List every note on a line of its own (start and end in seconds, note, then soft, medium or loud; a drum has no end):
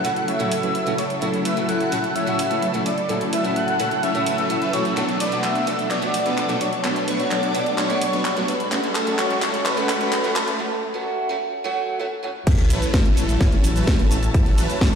0.00 0.10 A2 medium
0.00 4.93 C#3 medium
0.00 0.25 F#3 medium
0.00 4.93 F#3 medium
0.00 0.25 A3 medium
0.00 8.68 A3 medium
0.00 0.25 C#4 medium
0.00 0.25 E4 medium
0.00 4.93 E4 medium
0.00 0.25 A4 medium
0.00 8.68 A4 medium
0.00 0.30 F#5 loud
0.00 riser medium
0.05 0.10 A3 medium
0.05 0.10 C#4 medium
0.05 0.11 E4 medium
0.05 0.11 F#4 loud
0.05 open hi-hat medium
0.16 closed hi-hat soft
0.28 0.54 F#3 medium
0.28 0.54 A3 medium
0.28 0.54 C#4 medium
0.28 0.54 E4 medium
0.28 0.54 C#5 loud
0.28 1.00 E5 loud
0.28 closed hi-hat medium
0.39 0.84 A2 medium
0.39 0.84 A3 medium
0.39 0.84 C#4 medium
0.39 0.84 E4 medium
0.39 0.84 F#4 loud
0.39 closed hi-hat soft
0.52 open hi-hat loud
0.63 0.80 F#3 loud
0.63 0.80 A3 medium
0.63 0.80 C#4 medium
0.63 0.80 E4 medium
0.63 0.80 B4 loud
0.63 closed hi-hat soft
0.75 closed hi-hat medium
0.86 0.92 A2 medium
0.86 1.03 F#3 medium
0.86 0.92 A3 medium
0.86 1.03 A3 medium
0.86 0.92 C#4 medium
0.86 1.03 C#4 medium
0.86 1.03 E4 medium
0.86 0.93 E4 medium
0.86 0.93 F#4 loud
0.86 1.03 A4 loud
0.86 closed hi-hat soft
0.98 1.22 C#5 medium
0.98 open hi-hat medium
1.10 closed hi-hat soft
1.21 1.27 A2 medium
1.21 1.42 F#3 medium
1.21 1.27 A3 medium
1.21 1.42 A3 medium
1.21 1.28 C#4 medium
1.21 1.42 C#4 medium
1.21 1.42 E4 medium
1.21 1.28 E4 medium
1.21 1.28 F#4 loud
1.21 1.42 A4 loud
1.21 closed hi-hat medium
1.34 closed hi-hat soft
1.45 1.65 F#3 medium
1.45 1.65 A3 medium
1.45 1.65 C#4 medium
1.45 1.65 E4 medium
1.45 1.65 B4 medium
1.45 1.67 E5 loud
1.45 open hi-hat loud
1.56 1.89 A2 medium
1.56 1.89 A3 medium
1.56 1.89 C#4 medium
1.56 1.89 E4 medium
1.56 1.90 F#4 medium
1.56 closed hi-hat soft
1.69 2.13 F#3 medium
1.69 2.13 A3 medium
1.69 2.13 C#4 medium
1.69 2.13 E4 medium
1.69 2.13 A4 medium
1.69 2.12 F#5 loud
1.69 closed hi-hat medium
1.80 closed hi-hat soft
1.91 1.98 A2 medium
1.91 1.98 A3 medium
1.91 1.98 C#4 medium
1.91 1.98 E4 medium
1.91 1.98 F#4 loud
1.91 open hi-hat medium
2.04 closed hi-hat soft
2.16 2.42 F#3 medium
2.16 2.42 A3 medium
2.16 2.42 C#4 medium
2.16 2.42 E4 medium
2.16 2.42 C#5 loud
2.16 2.82 E5 loud
2.16 closed hi-hat medium
2.26 2.71 A2 loud
2.26 2.71 A3 medium
2.26 2.71 C#4 medium
2.26 2.72 E4 medium
2.26 2.72 F#4 loud
2.26 closed hi-hat soft
2.39 open hi-hat loud
2.51 2.67 F#3 loud
2.51 2.67 A3 medium
2.51 2.67 C#4 medium
2.51 2.67 E4 medium
2.51 2.67 B4 loud
2.51 closed hi-hat soft
2.62 closed hi-hat medium
2.73 2.80 A2 medium
2.73 2.91 F#3 medium
2.73 2.80 A3 medium
2.73 2.90 A3 medium
2.73 2.80 C#4 medium
2.73 2.91 C#4 medium
2.73 2.90 E4 medium
2.73 2.80 E4 medium
2.73 2.80 F#4 loud
2.73 2.90 A4 medium
2.73 closed hi-hat soft
2.86 3.08 D5 medium
2.86 open hi-hat loud
2.98 closed hi-hat soft
3.09 3.15 A2 medium
3.09 3.30 F#3 medium
3.09 3.30 A3 medium
3.09 3.15 A3 medium
3.09 3.15 C#4 medium
3.09 3.30 C#4 medium
3.09 3.30 E4 medium
3.09 3.15 E4 medium
3.09 3.15 F#4 loud
3.09 3.30 A4 loud
3.09 closed hi-hat medium
3.21 closed hi-hat soft
3.33 3.53 F#3 medium
3.33 3.53 A3 medium
3.33 3.53 C#4 medium
3.33 3.53 E4 medium
3.33 3.53 B4 medium
3.33 3.58 E5 loud
3.33 open hi-hat loud
3.44 3.77 A2 medium
3.44 3.77 A3 medium
3.44 3.77 C#4 medium
3.44 3.77 E4 medium
3.44 3.77 F#4 medium
3.44 closed hi-hat soft
3.56 4.00 F#3 medium
3.56 4.00 A3 medium
3.56 4.00 C#4 medium
3.56 4.00 E4 medium
3.56 4.00 A4 medium
3.56 4.05 F#5 loud
3.56 closed hi-hat medium
3.68 closed hi-hat soft
3.79 3.85 A2 loud
3.79 3.85 A3 medium
3.79 3.85 C#4 medium
3.79 3.86 E4 medium
3.79 3.86 F#4 loud
3.79 open hi-hat medium
3.91 closed hi-hat soft
4.03 4.24 F#3 medium
4.03 4.24 A3 medium
4.03 4.24 C#4 medium
4.03 4.24 E4 medium
4.03 4.24 C#5 loud
4.03 4.75 E5 loud
4.03 closed hi-hat medium
4.14 4.47 A2 medium
4.14 4.47 A3 medium
4.14 4.48 C#4 medium
4.14 4.48 E4 medium
4.14 4.48 F#4 loud
4.14 closed hi-hat soft
4.26 4.37 F#3 medium
4.26 4.36 A3 medium
4.26 4.37 C#4 medium
4.26 4.36 E4 medium
4.26 4.37 B4 medium
4.26 open hi-hat loud
4.38 4.59 F#3 medium
4.38 4.59 A3 medium
4.38 4.59 C#4 medium
4.38 4.59 E4 medium
4.38 4.59 A4 loud
4.38 closed hi-hat soft
4.49 4.55 A2 medium
4.49 4.56 A3 medium
4.49 4.56 C#4 medium
4.49 4.56 E4 medium
4.49 4.56 F#4 loud
4.49 closed hi-hat medium
4.62 4.71 F#3 medium
4.62 4.71 A3 medium
4.62 4.71 C#4 medium
4.62 4.71 E4 medium
4.62 4.71 B4 loud
4.62 closed hi-hat soft
4.73 4.79 B2 medium
4.73 4.93 F#3 medium
4.73 4.79 A3 medium
4.73 4.93 A3 medium
4.73 4.79 C#4 medium
4.73 4.93 C#4 medium
4.73 4.93 E4 medium
4.73 4.79 E4 medium
4.73 4.93 F#4 loud
4.73 4.79 F#4 medium
4.73 4.97 C#5 medium
4.73 open hi-hat medium
4.85 closed hi-hat soft
4.96 5.02 B2 medium
4.96 8.68 B2 medium
4.96 10.55 F#3 medium
4.96 5.17 F#3 medium
4.96 5.17 A3 medium
4.96 5.02 A3 medium
4.96 5.17 B3 medium
4.96 5.03 B3 medium
4.96 8.68 D4 medium
4.96 5.17 D4 medium
4.96 5.03 D4 medium
4.96 5.03 F#4 loud
4.96 5.17 A4 loud
4.96 clap soft
4.96 closed hi-hat medium
5.09 closed hi-hat soft
5.20 5.40 F#3 medium
5.20 5.40 A3 medium
5.20 5.40 B3 medium
5.20 5.40 D4 medium
5.20 5.40 B4 loud
5.20 5.42 D5 loud
5.20 open hi-hat loud
5.31 5.64 B2 medium
5.31 5.64 A3 medium
5.31 5.64 B3 medium
5.31 5.64 D4 medium
5.31 5.65 F#4 medium
5.31 closed hi-hat soft
5.44 5.88 F#3 medium
5.44 5.88 A3 medium
5.44 5.88 B3 medium
5.44 5.88 D4 medium
5.44 5.88 A4 medium
5.44 5.87 E5 loud
5.44 clap soft
5.44 closed hi-hat medium
5.55 closed hi-hat soft
5.66 5.73 B2 medium
5.66 5.73 A3 medium
5.66 5.73 B3 medium
5.66 5.73 D4 medium
5.66 5.73 F#4 loud
5.66 open hi-hat medium
5.79 closed hi-hat soft
5.91 6.17 F#3 medium
5.91 6.17 A3 medium
5.91 6.17 B3 medium
5.91 6.17 D4 medium
5.91 6.17 C#5 loud
5.91 6.62 D5 loud
5.91 clap medium
5.91 closed hi-hat medium
6.02 6.46 B2 loud
6.02 6.46 A3 medium
6.02 6.46 B3 medium
6.02 6.47 D4 medium
6.02 6.47 F#4 loud
6.02 closed hi-hat soft
6.14 open hi-hat loud
6.26 6.42 F#3 loud
6.26 6.42 A3 medium
6.26 6.42 B3 medium
6.26 6.42 D4 medium
6.26 6.42 B4 loud
6.26 closed hi-hat soft
6.37 clap medium
6.37 closed hi-hat medium
6.49 6.55 B2 loud
6.49 6.65 F#3 medium
6.49 6.55 A3 medium
6.49 6.66 A3 medium
6.49 6.65 B3 medium
6.49 6.55 B3 medium
6.49 6.65 D4 medium
6.49 6.55 D4 medium
6.49 6.55 F#4 loud
6.49 6.66 A4 loud
6.49 closed hi-hat soft
6.61 6.84 C#5 medium
6.61 open hi-hat medium
6.73 closed hi-hat soft
6.84 6.90 B2 loud
6.84 7.05 F#3 medium
6.84 7.05 A3 medium
6.84 6.90 A3 medium
6.84 7.05 B3 medium
6.84 6.90 B3 medium
6.84 7.05 D4 medium
6.84 6.90 D4 medium
6.84 6.90 F#4 loud
6.84 7.05 A4 loud
6.84 clap medium
6.84 closed hi-hat medium
6.96 closed hi-hat soft
7.08 7.28 F#3 medium
7.08 7.28 A3 medium
7.08 7.28 B3 medium
7.08 7.28 D4 medium
7.08 7.28 B4 loud
7.08 7.33 C#5 loud
7.08 open hi-hat loud
7.19 7.52 B2 medium
7.19 7.52 A3 medium
7.19 7.52 B3 medium
7.19 7.52 D4 medium
7.19 7.52 F#4 medium
7.19 closed hi-hat soft
7.31 7.75 F#3 medium
7.31 7.75 A3 medium
7.31 7.75 B3 medium
7.31 7.75 D4 medium
7.31 7.75 A4 medium
7.31 7.80 D5 loud
7.31 clap medium
7.31 closed hi-hat medium
7.43 closed hi-hat soft
7.54 7.60 B2 loud
7.54 7.60 A3 medium
7.54 7.60 B3 medium
7.54 7.61 D4 medium
7.54 7.61 F#4 loud
7.54 open hi-hat medium
7.66 closed hi-hat soft
7.78 8.04 F#3 medium
7.78 8.04 A3 medium
7.78 8.04 B3 medium
7.78 8.04 D4 medium
7.78 8.04 C#5 loud
7.78 8.50 C#5 loud
7.78 clap medium
7.78 closed hi-hat medium
7.89 8.34 B2 loud
7.89 8.34 A3 medium
7.89 8.34 B3 medium
7.89 8.34 D4 medium
7.89 8.34 F#4 loud
7.89 closed hi-hat soft
8.02 open hi-hat loud
8.13 8.30 F#3 loud
8.13 8.30 A3 medium
8.13 8.30 B3 medium
8.13 8.30 D4 medium
8.13 8.30 B4 loud
8.13 closed hi-hat soft
8.25 clap medium
8.25 closed hi-hat medium
8.36 8.42 B2 medium
8.36 8.53 F#3 medium
8.36 8.53 A3 medium
8.36 8.42 A3 medium
8.36 8.53 B3 medium
8.36 8.42 B3 medium
8.36 8.53 D4 medium
8.36 8.43 D4 medium
8.36 8.43 F#4 loud
8.36 8.53 A4 loud
8.36 closed hi-hat soft
8.48 8.72 B4 medium
8.48 open hi-hat medium
8.60 closed hi-hat soft
8.71 10.57 C#3 medium
8.71 8.77 F#3 medium
8.71 8.92 A3 loud
8.71 10.57 A3 medium
8.71 8.78 A3 medium
8.71 8.92 C#4 medium
8.71 8.78 C#4 medium
8.71 8.92 F#4 loud
8.71 10.58 F#4 medium
8.71 8.78 F#4 medium
8.71 10.57 A4 medium
8.71 clap medium
8.71 closed hi-hat medium
8.84 closed hi-hat soft
8.95 9.15 A3 medium
8.95 9.15 C#4 medium
8.95 9.15 G#4 loud
8.95 9.20 A4 loud
8.95 clap medium
8.95 open hi-hat medium
9.06 9.39 F#3 medium
9.06 9.39 A3 medium
9.06 9.39 C#4 medium
9.06 9.40 F#4 medium
9.06 closed hi-hat soft
9.19 9.63 A3 medium
9.19 9.63 C#4 medium
9.19 9.63 F#4 medium
9.19 9.67 C#5 loud
9.19 clap medium
9.19 closed hi-hat medium
9.30 closed hi-hat soft
9.42 9.48 F#3 medium
9.42 9.48 A3 medium
9.42 9.48 C#4 medium
9.42 9.48 F#4 loud
9.42 clap medium
9.42 open hi-hat medium
9.54 closed hi-hat soft
9.66 9.92 A3 medium
9.66 9.92 C#4 medium
9.66 9.92 A4 loud
9.66 10.35 B4 loud
9.66 clap medium
9.66 closed hi-hat medium
9.77 10.21 F#3 loud
9.77 10.21 A3 medium
9.77 10.22 C#4 medium
9.77 10.22 F#4 loud
9.77 closed hi-hat soft
9.89 clap medium
9.89 open hi-hat loud
10.01 10.17 A3 loud
10.01 10.17 C#4 medium
10.01 10.17 G#4 loud
10.01 closed hi-hat soft
10.12 clap medium
10.12 closed hi-hat medium
10.24 10.30 F#3 loud
10.24 10.30 A3 medium
10.24 10.40 A3 medium
10.24 10.40 C#4 medium
10.24 10.30 C#4 medium
10.24 10.40 F#4 loud
10.24 10.30 F#4 loud
10.24 closed hi-hat soft
10.36 10.47 A4 medium
10.36 clap medium
10.36 open hi-hat medium
10.48 closed hi-hat soft
10.59 10.65 F#3 medium
10.59 10.65 A3 medium
10.59 10.65 C#4 medium
10.59 10.65 F#4 loud
10.94 11.27 F#3 medium
10.94 11.27 A3 medium
10.94 11.27 C#4 medium
10.94 11.27 F#4 medium
11.29 11.35 F#3 loud
11.29 11.35 A3 medium
11.29 11.36 C#4 medium
11.29 11.36 F#4 medium
11.64 11.97 F#3 loud
11.64 11.98 A3 medium
11.64 11.98 C#4 medium
11.64 11.98 F#4 loud
11.99 12.05 F#3 medium
11.99 12.06 A3 medium
11.99 12.06 C#4 medium
11.99 12.06 F#4 loud
12.23 12.29 A2 medium
12.23 12.29 F#3 medium
12.23 12.29 A3 medium
12.23 12.29 C#4 medium
12.23 12.29 F#4 medium
12.47 12.65 A1 loud
12.47 12.67 F#3 medium
12.47 12.67 A3 medium
12.47 12.67 C#4 medium
12.47 12.67 E4 medium
12.47 14.95 F#4 medium
12.47 12.67 A4 loud
12.47 14.95 C#5 medium
12.47 14.95 E5 medium
12.47 14.95 A5 medium
12.47 kick loud
12.47 closed hi-hat medium
12.47 crash loud
12.47 sub drop medium
12.47 shaker soft
12.59 closed hi-hat soft
12.70 12.79 A1 medium
12.70 12.90 F#3 medium
12.70 12.90 A3 medium
12.70 12.90 C#4 medium
12.70 12.90 E4 medium
12.70 12.90 B4 loud
12.70 open hi-hat loud
12.70 shaker medium
12.82 closed hi-hat soft
12.82 shaker soft
12.94 13.12 A1 medium
12.94 13.38 F#3 medium
12.94 13.38 A3 medium
12.94 13.38 C#4 medium
12.94 13.38 A4 medium
12.94 kick loud
12.94 snare loud
12.94 closed hi-hat medium
12.94 shaker soft
13.05 closed hi-hat soft
13.17 13.26 A1 medium
13.17 open hi-hat loud
13.17 shaker medium
13.29 13.38 A1 loud
13.29 closed hi-hat soft
13.29 shaker soft
13.41 13.59 A1 medium
13.41 13.67 F#3 medium
13.41 13.67 A3 medium
13.41 13.67 C#4 medium
13.41 13.67 E4 medium
13.41 13.67 C#5 loud
13.41 kick loud
13.41 snare medium
13.41 closed hi-hat medium
13.41 shaker soft
13.52 closed hi-hat soft
13.64 13.82 A1 medium
13.64 open hi-hat loud
13.64 shaker medium
13.76 13.92 F#3 loud
13.76 13.92 A3 medium
13.76 13.92 C#4 medium
13.76 13.92 E4 medium
13.76 13.92 B4 loud
13.76 closed hi-hat soft
13.76 shaker soft
13.87 14.06 A1 medium
13.87 kick loud
13.87 snare loud
13.87 closed hi-hat medium
13.87 shaker soft
13.99 14.15 F#3 medium
13.99 14.16 A3 medium
13.99 14.16 C#4 medium
13.99 14.16 E4 medium
13.99 14.16 A4 loud
13.99 closed hi-hat soft
14.11 14.29 A1 medium
14.11 open hi-hat medium
14.11 shaker medium
14.23 closed hi-hat soft
14.23 shaker soft
14.34 14.53 A1 loud
14.34 14.55 F#3 loud
14.34 14.55 A3 medium
14.34 14.55 C#4 medium
14.34 14.55 E4 medium
14.34 14.55 A4 loud
14.34 kick loud
14.34 closed hi-hat medium
14.34 shaker soft
14.46 closed hi-hat soft
14.58 14.67 A1 medium
14.58 14.78 F#3 medium
14.58 14.78 A3 medium
14.58 14.78 C#4 medium
14.58 14.78 E4 medium
14.58 14.78 B4 loud
14.58 open hi-hat loud
14.58 shaker medium
14.70 closed hi-hat soft
14.70 shaker soft
14.81 14.95 A1 medium
14.81 14.95 A3 medium
14.81 14.95 C#4 medium
14.81 14.95 E4 medium
14.81 14.95 A4 medium
14.81 kick loud
14.81 snare loud
14.81 closed hi-hat medium
14.81 shaker soft